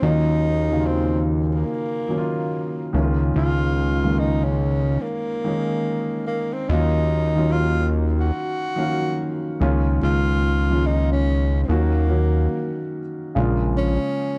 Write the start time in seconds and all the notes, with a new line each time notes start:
0.01 D#2 D#3 F#3 A#3 C#4 D#4 F4
0.70 C#3 D#3 F#3 A#3 D#4
0.79 F4
0.86 C4
1.55 A#3
2.08 D#3 F#3 A#3 C#4 D#4
2.18 F4
2.93 C#2 D#3 G#3 A#3 C#4 E4
3.02 F4
3.36 C#2 F4
4.03 D#3 G#3 A#3 C#4 F4
4.19 D#4
4.44 C#4
5.01 A#3
5.44 D#3 G#3 A#3 C#4 D#4
6.27 A#3
6.53 C4
6.69 D#2 D#3 F#3 A#3 C#4 D#4 F4
7.35 D#3 F#3 A#3 C#4 F4
7.52 F4
8.20 F#4
8.76 D#3 F3 A#3 C#4 F5
8.83 F#3
9.60 C#2 D#3 G#3 A#3 C#4 F4
10.03 C#2 F4
10.69 D#3 G#3 A#3 C#4 F4
10.86 D#4
11.12 C#4
11.63 C4
11.68 D#2 D#3 F#3 A#3 C#4 F#4
12.08 D#3 F#3 A#3 C#4 F#4
13.35 A#1 C#3 F3 G#3 A#3 F4
13.77 C#4